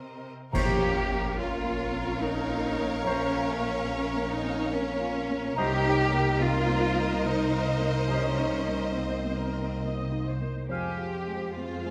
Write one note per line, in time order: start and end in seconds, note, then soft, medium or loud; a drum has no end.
0.00 0.28 C3 medium
0.00 0.49 A#3 soft
0.00 0.28 C4 medium
0.00 0.49 C4 soft
0.00 0.49 D#4 soft
0.00 0.28 A#4 medium
0.00 0.29 C5 medium
0.00 0.29 D#5 medium
0.52 3.01 A#1 medium
0.52 5.55 A#1 medium
0.52 1.75 A#2 medium
0.52 5.55 A#3 medium
0.52 5.55 C#4 medium
0.52 1.34 G4 medium
0.52 5.54 A#4 medium
0.52 0.85 C5 medium
0.52 6.37 C#5 medium
0.52 0.85 C#5 medium
0.52 5.54 F5 medium
0.52 0.92 A#5 medium
0.52 concert bass drum medium
0.52 crash medium
0.81 1.26 F4 soft
1.09 1.53 A#3 soft
1.37 1.81 C#4 soft
1.37 2.21 F4 medium
1.64 2.08 A#3 soft
1.91 2.20 C4 soft
2.20 2.65 A#3 medium
2.20 3.05 D#4 medium
2.48 2.93 F4 soft
2.77 3.22 A#3 medium
3.04 5.53 A#1 medium
3.04 4.28 C#4 medium
3.04 3.37 C5 medium
3.04 3.37 C#5 medium
3.04 3.44 A#5 medium
3.34 3.78 F4 medium
3.60 4.05 A#3 soft
3.89 4.33 C#4 soft
4.16 4.60 A#3 soft
4.31 4.72 D#4 medium
4.43 4.71 C4 soft
4.71 5.17 A#3 soft
4.71 5.58 C#4 medium
4.99 5.46 F4 medium
5.29 5.58 A#3 medium
5.56 8.04 C2 medium
5.56 10.45 C2 medium
5.56 10.33 D#4 medium
5.56 6.39 G4 loud
5.56 8.83 A#4 medium
5.56 5.88 C5 medium
5.56 10.49 D#5 medium
5.56 5.89 D#5 medium
5.56 5.95 A#5 medium
5.60 10.34 A#3 medium
5.85 6.29 D#4 medium
6.12 6.56 A#3 soft
6.40 6.84 C4 medium
6.40 7.24 F4 loud
6.40 10.49 C5 medium
6.67 7.12 A#3 medium
6.96 7.24 C4 soft
7.24 7.69 A#3 soft
7.24 8.09 D#4 medium
7.52 7.97 D#4 medium
7.80 8.25 A#3 soft
8.08 10.65 C2 medium
8.08 8.94 C#4 medium
8.08 8.41 C5 medium
8.08 8.41 D#5 medium
8.08 8.49 A#5 medium
8.38 8.84 D#4 soft
8.67 9.13 A#3 soft
8.96 10.27 C4 medium
8.96 9.43 C4 soft
8.96 9.37 C5 medium
9.25 9.71 A#3 soft
9.39 9.83 A#4 medium
9.56 9.84 C4 soft
9.83 10.29 A#3 soft
9.83 10.25 D#5 medium
10.12 10.58 D#4 soft
10.27 10.70 C5 soft
10.41 10.69 A#3 soft
10.69 11.90 F2 soft
10.69 11.90 F2 medium
10.69 11.90 G#3 medium
10.69 11.52 G4 medium
10.69 11.02 C5 soft
10.69 11.90 C5 medium
10.69 11.90 F5 soft
10.69 11.02 F5 medium
10.69 11.10 G#5 medium
10.99 11.44 F4 soft
11.27 11.73 G#3 soft
11.57 11.90 C4 soft
11.57 11.90 F4 medium
11.85 11.90 G#3 soft